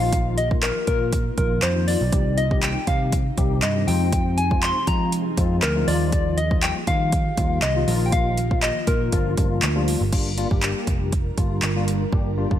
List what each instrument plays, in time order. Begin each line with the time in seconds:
Already playing: picked electric bass A#1, tine electric piano D#3 F3 A#3 D#4 F4, ambient pad A#3 D#4 F4, soft synth lead F5
0.13 kick, closed hi-hat
0.37 soft synth lead D#5, closed hi-hat
0.51 tine electric piano D#3 F3 A#3 D#4 F4, kick
0.62 soft synth lead A#4, clap, closed hi-hat
0.87 picked electric bass A#2, tine electric piano D#3 F3 A#3 D#4 F4, soft synth lead A#4, kick, closed hi-hat
1.13 kick, closed hi-hat
1.37 picked electric bass A#1, tine electric piano D#3 F3 A#3 D#4 F4, soft synth lead A#4, kick, closed hi-hat
1.62 picked electric bass F2, soft synth lead C5, clap, closed hi-hat
1.76 tine electric piano D#3 F3 A#3 D#4 F4
1.88 soft synth lead D5, open hi-hat
2.01 picked electric bass B1
2.12 picked electric bass C2, ambient pad C3 C4 G4, tine electric piano D#3 G3 C4 D#4 G4, kick, closed hi-hat
2.37 soft synth lead D#5, closed hi-hat
2.51 tine electric piano D#3 G3 C4 D#4 G4, kick
2.62 soft synth lead G5, clap, closed hi-hat
2.87 picked electric bass C3, tine electric piano D#3 G3 C4 D#4 G4, soft synth lead F5, kick, closed hi-hat
3.12 kick, closed hi-hat
3.37 picked electric bass C2, tine electric piano D#3 G3 C4 D#4 G4, kick, closed hi-hat
3.62 picked electric bass G2, soft synth lead D#5, clap, closed hi-hat
3.75 tine electric piano D#3 G3 C4 D#4 G4
3.87 picked electric bass F2, tine electric piano F3 G#3 C4 D#4 F4, ambient pad F3 G#4, soft synth lead G5, open hi-hat
4.12 kick, closed hi-hat
4.38 soft synth lead G#5, closed hi-hat
4.51 tine electric piano F3 G#3 C4 D#4 F4, kick
4.62 soft synth lead C6, clap, closed hi-hat
4.87 tine electric piano F3 G#3 C4 D#4 F4, picked electric bass F3, soft synth lead A#5, kick, closed hi-hat
5.12 closed hi-hat
5.37 picked electric bass F2, tine electric piano F3 G#3 C4 D#4 F4, kick, closed hi-hat
5.62 picked electric bass D2, soft synth lead A#4, clap, closed hi-hat
5.75 tine electric piano F3 G#3 C4 D#4 F4
5.87 picked electric bass D#2, ambient pad D#3 A#3 F4 G4, tine electric piano F3 G3 A#3 D#4 F4, soft synth lead D5, open hi-hat
6.12 kick, closed hi-hat
6.38 soft synth lead D#5, closed hi-hat
6.51 tine electric piano F3 G3 A#3 D#4 F4, kick
6.62 soft synth lead G5, clap, closed hi-hat
6.87 picked electric bass D#3, tine electric piano F3 G3 A#3 D#4 F4, soft synth lead F5, kick, closed hi-hat
7.12 kick, closed hi-hat
7.37 picked electric bass D#2, tine electric piano F3 G3 A#3 D#4 F4, kick, closed hi-hat
7.62 picked electric bass C2, soft synth lead D#5, clap, closed hi-hat
7.76 tine electric piano F3 G3 A#3 D#4 F4
7.87 picked electric bass A#1, tine electric piano D#3 F3 A#3 D#4 F4, open hi-hat
8.06 soft synth lead G5
8.12 soft synth lead F5, kick, closed hi-hat
8.37 closed hi-hat
8.51 tine electric piano D#3 F3 A#3 D#4 F4, kick
8.62 soft synth lead D#5, clap, closed hi-hat
8.87 picked electric bass A#2, tine electric piano D#3 F3 A#3 D#4 F4, soft synth lead A#4, kick, closed hi-hat
9.12 picked electric bass G1, tine electric piano F3 G3 A#3 D4 F4, kick, closed hi-hat
9.37 picked electric bass G1, tine electric piano F3 G3 A#3 D4 F4, kick, closed hi-hat
9.62 picked electric bass D2, clap, closed hi-hat
9.75 tine electric piano F3 G3 A#3 D4 F4
9.88 open hi-hat
10.01 picked electric bass G1
10.12 picked electric bass G1, tine electric piano G3 A#3 D4 F4, ambient pad G3 D4 F4 A#4, kick, closed hi-hat, crash
10.37 tine electric piano G3 A#3 D4 F4, closed hi-hat
10.51 picked electric bass G1, tine electric piano G3 A#3 D4 G4, kick
10.62 clap, closed hi-hat
10.87 picked electric bass F1, kick, closed hi-hat
11.12 kick, closed hi-hat
11.37 picked electric bass G1, tine electric piano G3 A#3 D4 F4, kick, closed hi-hat
11.62 picked electric bass G1, clap, closed hi-hat
11.76 tine electric piano G3 A#3 D4 F4
11.88 closed hi-hat
12.12 picked electric bass G1, tine electric piano G3 A#3 D4 G4, kick
12.37 tine electric piano G3 A#3 D4 F4
12.50 picked electric bass G1, tine electric piano G3 A#3 D4 F4, kick